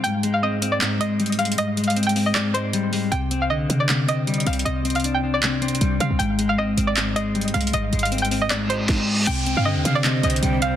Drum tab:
CC |------------------------------------------------------------------------------------------------|------------------------------------------------------------------------------------------------|------------------------------------------------------------------------------------------------|------------------------------------------------------------------------------------------------|
HH |x-----------x-----------------------x-----------x-----------x-----------x---x---x---x---x---x---|x-----------x---x---x---x---x---x---o-----------x-----------x-----------x-----------o-----------|x-----------x-----------------------x-----------x-----------x-----------x---x---x---x---x---x---|x-----------x--x--x--x--x-----------------------x-----------x---x---x---x-----------x-----------|
CP |------------------------------------------------x-----------------------------------------------|------------------------------------------------x-----------------------------------------------|------------------------------------------------x-----------------------------------------------|------------------------------------------------x-----------------------------------------------|
SD |------------------------------------------------------------------------------------------------|------------------------------------------------------------------------------------------------|------------------------------------------------------------------------------------------------|------------------------------------------------------------------------------------------------|
BD |------------------------------------------------------------------------------------------------|------------------------------------------------------------------------------------------------|------------------------------------------------------------------------------------------------|------------------------------------------------------------------------------------------------|

CC |------------------------------------------------------------------------------------------------|------------------------------------------------------------------------------------------------|x-----------------------------------------------------------------------------------------------|
HH |x-----------x-----------------------x-----------x-----------x-----------x---x---x---x---x---x---|x-----------x---x---x---x---x---x---o-----------x-----------x-----------------------------------|x-----------x-----------------------x-----------x-----------x---x---x---x-----------x-----------|
CP |------------------------------------------------x-----------------------------------------------|------------------------------------------------x-----------------------------------------------|------------------------------------------------x-----------------------------------------------|
SD |------------------------------------------------------------------------------------------------|------------------------------------------------------------------------o-----------------------|------------------------------------------------------------------------------------------------|
BD |------------------------------------------------------------------------------------------------|------------------------------------------------------------------------o-----------------------|------------------------------------------------------------------------------------------------|